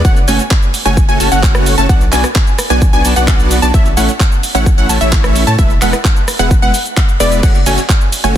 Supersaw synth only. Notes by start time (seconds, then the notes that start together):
0.05 F#4 F#5
0.28 A3 C#4 F#4 C#5 G#5
0.86 A3 C#4 F#4 C#5 G#5
1.09 A3 C#4 F#4 C#5 G#5
1.20 A3 C#4 F#4 C#5 A5
1.32 A3 C#4 F#4 C#5 F#5
1.78 A3 C#4 F#4 C#5 A5
2.12 B3 D4 F#4 D5 G#5
2.70 B3 D4 F#4 D5 G#5
2.93 B3 D4 F#4 D5 G#5
3.05 B3 D4 F#4 D5 A5
3.16 B3 D4 F#4 D5 F#5
3.62 B3 D4 F#4 D5 A5
3.74 A3 C#4 E4 C#5 E5
3.97 A3 C#4 E4 C#5 F#5
4.55 A3 C#4 E4 C#5 F#5
4.78 A3 C#4 E4 C#5 F#5
4.89 A3 C#4 E4 C#5 A5
5.01 A3 C#4 E4 C#5 E5
5.47 A3 C#4 E4 C#5 A5
5.59 G#3 B3 E4 B4 E5
5.82 G#3 B3 E4 B4 F#5
6.39 G#3 B3 E4 B4 F#5
6.62 G#3 B3 E4 B4 F#5
7.20 G#3 B3 E4 B4 D5
7.43 A3 C#4 F#4 C#5
7.66 A3 C#4 F#4 C#5 G#5
8.24 A3 C#4 F#4 C#5 G#5